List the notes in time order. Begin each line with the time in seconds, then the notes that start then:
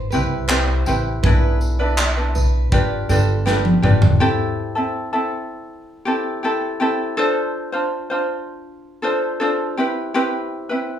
Already playing: C4 E4 B4
0.11 C2 C4 E4 G4 B4, tambourine
0.48 C4 E4 G4 B4 C5, clap
0.86 A1 C4 E4 G4 B4, tambourine
1.23 B1 D4 E4 G#4 B4, kick
1.61 tambourine
1.79 D4 E4 B4 D5
1.98 clap
2.16 D4 E4 B4
2.35 B1 B4, tambourine
2.72 G1 D4 F4 G4 B4 D5, kick
3.09 G1 D4 F4 G4 A4 B4, tambourine
3.46 D4 F4 G4 B4, snare, clap
3.65 high tom
3.82 G1 D4 F4 G4 B4 D5, mid tom
4.02 floor tom
4.20 C4 E4 G4 A4
4.75 C4 E4 A4
5.13 C4 E4 A4
6.05 C4 E4 G4 A4
6.43 C4 E4 G4 A4
6.80 C4 E4 G4 A4
7.17 D4 F4 A4 C5
7.72 D4 F4 C5
8.10 D4 F4 C5
9.02 D4 F4 A4 C5
9.40 D4 F4 A4 C5
9.77 C4 E4 G4 B4
10.14 C4 E4 G4 B4
10.69 C4 E4 B4